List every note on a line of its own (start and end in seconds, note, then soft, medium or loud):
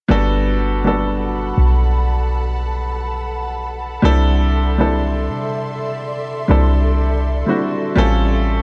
0.08 1.54 G1 loud
0.08 0.77 G3 loud
0.08 0.77 B3 medium
0.08 0.77 D4 medium
0.08 0.78 F#4 medium
0.08 8.62 A4 medium
0.08 0.78 A4 loud
0.08 3.99 F#5 medium
0.08 3.99 A5 medium
0.08 3.99 B5 medium
0.84 2.60 G3 medium
0.84 2.60 B3 medium
0.84 2.60 D4 medium
0.84 2.61 F#4 medium
0.84 2.61 A4 medium
1.58 3.99 B1 loud
4.02 5.30 C2 loud
4.02 4.70 G3 loud
4.02 4.71 C4 medium
4.02 4.71 D4 medium
4.02 4.71 E4 loud
4.02 4.72 A4 loud
4.02 7.93 D5 medium
4.02 7.93 E5 medium
4.02 7.93 C6 medium
4.78 6.32 G3 medium
4.78 6.33 C4 medium
4.78 6.33 D4 medium
4.78 6.33 E4 medium
4.78 6.34 A4 medium
5.29 6.45 C3 medium
6.48 7.44 C2 loud
6.48 7.38 G3 medium
6.48 7.38 C4 medium
6.48 7.38 D4 medium
6.48 7.39 E4 medium
6.48 7.39 A4 medium
7.46 7.91 G3 medium
7.46 7.92 C4 medium
7.46 7.92 D4 medium
7.46 7.92 E4 medium
7.46 7.93 F#4 medium
7.96 8.62 A1 loud
7.96 8.62 G3 loud
7.96 8.62 C4 loud
7.96 8.62 C#4 loud
7.96 8.62 F4 medium
7.96 8.62 A4 loud
7.96 8.62 F5 medium
7.96 8.62 G5 medium
7.96 8.62 C#6 medium